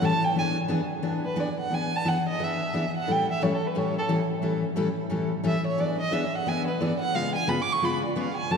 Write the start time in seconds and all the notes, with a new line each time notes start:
0.01 A2 E3 G3 C#4 E4 A4 A5
0.24 G5
0.35 E3 B3 D4 G#4 G#5
0.68 E3 B3 D4 G#4
1.02 E3 B3 D4 G#4
1.25 B4
1.36 E3 B3 D4 G#4
1.40 D5
1.60 F#5
1.70 E3 B3 D4 G#4
1.74 G#5
1.96 A5
2.05 E3 B3 D4 G#4 F#5
2.29 D#5
2.39 E3 B3 D4 G#4
2.44 E5
2.74 E3 B3 D4 G#4
2.97 F#5
3.07 A2 E3 G3 C#4 E4 A4
3.11 G5
3.32 E5
3.41 A2 E3 G3 C#4 E4 A4 C#5
3.55 A4
3.67 B4
3.75 A2 E3 G3 C#4 E4 A4 C#5
3.98 A4
4.09 A2 E3 G3 C#4 E4 A4
4.42 A2 E3 G3 C#4 E4 A4
4.76 A2 E3 G3 C#4 E4 A4
5.10 A2 E3 G3 C#4 E4 A4
5.44 A2 E3 G3 C#4 E4 A4 E5
5.67 C#5
5.78 E3 B3 D4 G#4 D5
6.01 D#5
6.11 E3 B3 D4 G#4 E5
6.35 F#5
6.46 E3 B3 D4 G#4 G#5
6.67 B4
6.81 E3 B3 D4 G#4 D5
7.00 F#5
7.14 C#3 G#3 B3 F4 G#4 F5
7.35 G#5
7.47 C#3 G#3 B3 F4 G#4 B5
7.62 D6
7.73 C#6
7.82 C#3 G#3 B3 F4 G#4 B5
8.05 D5
8.15 C#3 G#3 B3 F4 G#4
8.20 F5
8.37 G#5
8.50 F#2 C#3 E3 A3 C#4 F#4 A5